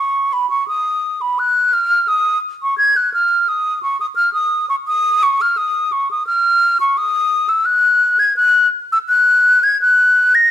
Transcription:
0.00 0.35 C#6 medium
0.33 0.49 B5 medium
0.50 0.67 C#6 medium
0.68 1.23 D#6 medium
1.21 1.40 B5 medium
1.39 1.75 F#6 medium
1.73 2.10 F6 medium
2.08 2.38 D#6 medium
2.63 2.77 C#6 medium
2.78 2.98 G#6 medium
2.96 3.13 F#6 medium
3.14 3.50 F6 medium
3.48 3.82 D#6 medium
3.83 3.99 C#6 medium
4.00 4.06 D#6 medium
4.16 4.33 F6 medium
4.33 4.68 D#6 medium
4.69 4.75 C#6 medium
4.87 5.24 D#6 medium
5.23 5.43 C#6 medium
5.41 5.59 F6 medium
5.57 5.94 D#6 medium
5.92 6.09 C#6 medium
6.11 6.26 D#6 medium
6.27 6.78 F6 loud
6.80 6.99 C#6 medium
6.98 7.50 D#6 medium
7.49 7.67 E6 medium
7.65 8.21 F#6 medium
8.19 8.36 G#6 medium
8.36 8.67 F#6 medium
8.92 8.98 E6 medium
9.09 9.65 F#6 loud
9.63 9.81 G#6 medium
9.81 10.36 F#6 medium
10.35 10.51 A#6 medium

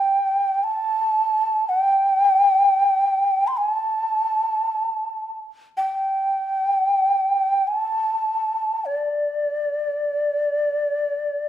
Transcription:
0.00 0.65 G5 medium
0.64 1.70 A5 medium
1.69 3.49 G5 medium
3.47 3.59 C6 medium
3.57 3.70 G#5 medium
3.70 5.40 A5 medium
5.77 7.69 G5 medium
7.67 8.87 A5 medium
8.85 11.49 D5 medium

